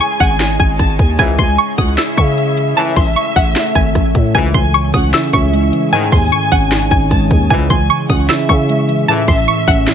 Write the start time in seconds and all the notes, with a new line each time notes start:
Already playing: G#3 G#4 C#5 D#5 G#5
0.00 C#6, closed hi-hat
0.20 G#1 F#5, kick, closed hi-hat
0.40 finger snap, snare, closed hi-hat
0.60 G#1 G#5, kick, closed hi-hat
0.79 G#1 A5, kick, cross-stick, closed hi-hat
0.99 D#2 G#5, kick, closed hi-hat
1.19 C#2 G#2 C#3 E3 C#4 E4 G#4 G#5, kick, closed hi-hat
1.38 C#2 G#5 C6, kick, closed hi-hat
1.58 C#6, closed hi-hat
1.78 C#2 F#5 D#6, kick, closed hi-hat
1.98 E5 E6, finger snap, snare, closed hi-hat
2.17 C#3 C#6, kick, closed hi-hat
2.38 closed hi-hat
2.57 closed hi-hat
2.77 C#2 A2 E3 A3 A4 C#5 E5 A5, closed hi-hat
2.96 A1 C6, kick, open hi-hat
3.16 C#6, closed hi-hat
3.36 A1 F#5, kick, closed hi-hat
3.56 finger snap, snare, closed hi-hat
3.75 G#1 G#5, kick, cross-stick, closed hi-hat
3.95 A1, kick, cross-stick, closed hi-hat
4.15 A2, kick, closed hi-hat
4.35 C#2 G#2 C#3 E3 C#4 E4 G#4 G#5, kick, closed hi-hat
4.54 C#2 E3 G#5 C6, kick, closed hi-hat
4.74 C#6, closed hi-hat
4.94 C#2 C#4 F#5 D#6, kick, closed hi-hat
5.13 E4 E5 E6, finger snap, snare, closed hi-hat
5.33 C#2 C#4 C#6, kick, closed hi-hat
5.53 G#3, closed hi-hat
5.73 E3, closed hi-hat
5.92 G#2 D#3 G#3 C#5 D#5 G#5, closed hi-hat
6.12 D#2 D#3 C6, kick, open hi-hat
6.32 C#6, closed hi-hat
6.51 G#1 C#4 F#5, kick, closed hi-hat
6.71 D#4, finger snap, snare, closed hi-hat
6.91 G#1 C#4 G#5, kick, closed hi-hat
7.10 G#1 G#3 A5, kick, cross-stick, closed hi-hat
7.30 D#2 D#3 G#5, kick, closed hi-hat
7.50 C#2 G#2 C#3 E3 C#4 E4 G#4 G#5, kick, closed hi-hat
7.70 C#2 E3 G#5 C6, kick, closed hi-hat
7.90 C#6, closed hi-hat
8.10 C#2 C#4 F#5 D#6, kick, closed hi-hat
8.29 E4 E5 E6, finger snap, snare, closed hi-hat
8.49 C#3 C#4 C#6, kick, closed hi-hat
8.69 G#3, closed hi-hat
8.88 E3, closed hi-hat
9.08 C#2 A2 E3 A3 A4 C#5 E5 A5, closed hi-hat
9.28 A1 E3 C6, kick, open hi-hat
9.48 C#6, closed hi-hat
9.68 A1 C#4 F#5, kick, closed hi-hat
9.87 E4, finger snap, snare, closed hi-hat